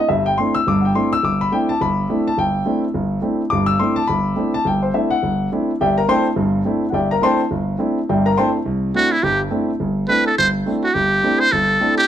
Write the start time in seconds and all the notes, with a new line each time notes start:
0.09 G1 G2 E5
0.26 G5
0.38 A3 C4 D4 E4 C6
0.55 E6
0.67 G1 G2 D6
0.85 G5
0.95 A3 C4 D4 E4 C6
1.13 E6
1.23 G1 D6
1.41 B5
1.52 A3 C4 D4 E4 G5
1.69 A5
1.81 G1 B5
2.09 A3 C4 D4 E4
2.27 A5
2.38 G1 G5
2.66 A3 C4 D4 E4
2.94 G1
3.22 A3 C4 D4 E4
3.50 G1 G2 D6
3.66 E6
3.79 A3 C4 D4 E4 C6
3.96 A5
4.08 G1 B5
4.36 A3 C4 D4 E4
4.54 A5
4.65 G1 G5
4.83 C5
4.94 A3 C4 D4 E4 E5
5.10 F#5
5.23 G1
5.52 A3 C4 D4 E4
5.81 G1 G4 D5 E5 G5
5.98 A#4 A#5
6.08 A3 C4 D4 E4 C5 G5 A5 C6
6.36 G1 G2
6.65 A3 C4 D4 E4
6.90 G1 D5 F#5
6.94 G4 E5 G5
7.11 A#4 A#5
7.21 A3 C4 D4 E4 C5 G5 A5 C6
7.51 G1
7.78 A3 C4 D4 E4
8.09 G1 G2 G4 D5 E5 G5
8.26 A#4 A#5
8.37 A3 C4 D4 E4 C5 G5 A5 C6
8.66 C2
8.94 A3 C4 D4 E4 F#4
9.12 E4
9.23 G1 G2 G4
9.51 A3 C4 D4 E4
9.80 G1
10.08 A3 C4 D4 E4 B4
10.26 A4
10.38 G1 C5
10.66 A3 C4 D4 E4
10.84 F#4
10.94 G1 G4
11.23 A3 C4 D4 E4
11.40 C5
11.52 G1 A4
11.80 A3 C4 D4 E4
11.98 G4